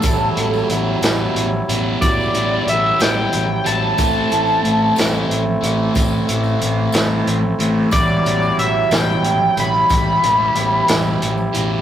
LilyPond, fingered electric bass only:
\new Staff \with { instrumentName = "Fingered electric bass" } { \clef bass \time 6/8 \key e \minor \tempo 4. = 61 a,,8 a,,8 a,,8 a,,8 a,,8 a,,8 | a,,8 a,,8 a,,8 a,,8 a,,8 a,,8 | a,,8 a,,8 a,,8 a,,8 a,,8 a,,8 | a,,8 a,,8 a,,8 a,,8 a,,8 a,,8 |
a,,8 a,,8 a,,8 a,,8 a,,8 a,,8 | a,,8 a,,8 a,,8 a,,8 a,,8 a,,8 | }